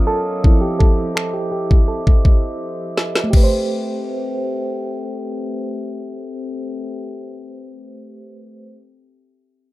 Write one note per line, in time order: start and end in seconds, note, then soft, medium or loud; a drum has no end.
0.00 0.41 F#3 medium
0.00 0.41 C#4 soft
0.00 0.41 F4 medium
0.00 0.46 A#4 loud
0.00 0.44 C#5 medium
0.00 3.30 D#5 medium
0.00 0.44 F5 medium
0.00 0.44 D#6 medium
0.07 0.63 A4 loud
0.44 3.29 F3 medium
0.44 3.29 C4 soft
0.44 3.30 E4 medium
0.44 3.31 C5 medium
0.44 3.31 E5 medium
0.44 3.31 D6 medium
0.44 kick loud
0.61 0.70 G4 medium
0.79 1.14 A4 medium
0.79 kick medium
1.15 1.33 A4 medium
1.15 finger snap loud
1.33 1.50 G4 medium
1.52 1.89 G4 medium
1.71 kick medium
1.88 2.93 A4 medium
2.07 kick medium
2.25 kick medium
2.97 snare medium
3.15 snare medium
3.24 7.64 A3 medium
3.30 6.99 C4 medium
3.30 7.67 G4 medium
3.30 6.99 G4 medium
3.30 6.99 A4 medium
3.30 6.99 E5 medium
3.30 6.99 G5 medium
3.30 kick medium
3.30 crash medium
3.37 7.70 B4 medium
3.44 7.74 C5 medium